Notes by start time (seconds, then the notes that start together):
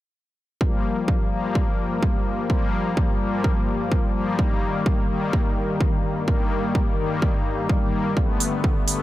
0.61 G2 F3 G3 A#3, kick
1.08 kick
1.32 F3 G3 A#3
1.55 kick
2.03 kick
2.50 F3 G3 A#3, kick
2.97 kick
3.21 F3 G3 A#3
3.44 kick
3.92 kick
4.15 F3 G3 A#3
4.39 D#3 G3 A#3, kick
4.86 kick
5.10 D#3 G3 A#3
5.33 kick
5.81 kick
6.28 D#3 G3 A#3, kick
6.75 kick
6.99 D#3 G3 A#3
7.22 kick
7.69 kick
7.81 D#3 G3 A#3
8.17 D3 A3 B3, kick
8.40 open hi-hat
8.64 kick
8.88 D3 A3 B3, open hi-hat